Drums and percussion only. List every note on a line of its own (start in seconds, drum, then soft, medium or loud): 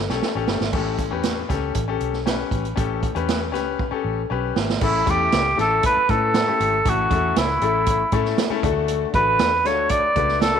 0.09 snare medium
0.22 snare medium
0.48 snare loud
0.61 snare medium
0.73 kick loud
0.73 crash medium
0.98 kick medium
0.98 closed hi-hat medium
1.23 snare loud
1.23 closed hi-hat loud
1.50 kick medium
1.50 snare soft
1.50 closed hi-hat medium
1.75 kick medium
1.75 closed hi-hat loud
2.00 closed hi-hat medium
2.13 snare soft
2.27 snare loud
2.27 closed hi-hat medium
2.51 kick loud
2.51 closed hi-hat medium
2.65 closed hi-hat soft
2.77 kick loud
2.77 closed hi-hat loud
3.03 kick medium
3.03 closed hi-hat medium
3.16 closed hi-hat medium
3.29 snare loud
3.29 closed hi-hat loud
3.55 snare soft
3.55 closed hi-hat medium
3.79 kick medium
4.56 snare loud
4.70 snare medium
4.81 kick loud
4.81 crash loud
5.07 kick medium
5.07 closed hi-hat medium
5.32 snare loud
5.32 closed hi-hat loud
5.59 snare soft
5.59 closed hi-hat medium
5.83 kick loud
5.83 closed hi-hat loud
6.09 kick medium
6.09 closed hi-hat medium
6.34 snare loud
6.34 closed hi-hat loud
6.60 closed hi-hat medium
6.85 kick loud
6.85 closed hi-hat loud
7.11 kick loud
7.11 closed hi-hat medium
7.36 snare loud
7.36 closed hi-hat loud
7.61 closed hi-hat medium
7.86 kick loud
7.86 closed hi-hat loud
8.12 kick medium
8.12 closed hi-hat medium
8.25 snare soft
8.38 snare loud
8.38 closed hi-hat medium
8.63 kick loud
8.63 closed hi-hat medium
8.88 closed hi-hat loud
9.14 kick loud
9.14 closed hi-hat medium
9.39 snare loud
9.39 closed hi-hat loud
9.65 snare soft
9.65 closed hi-hat medium
9.89 kick medium
9.89 closed hi-hat loud
10.16 kick loud
10.16 closed hi-hat medium
10.28 snare soft
10.41 snare loud
10.41 closed hi-hat medium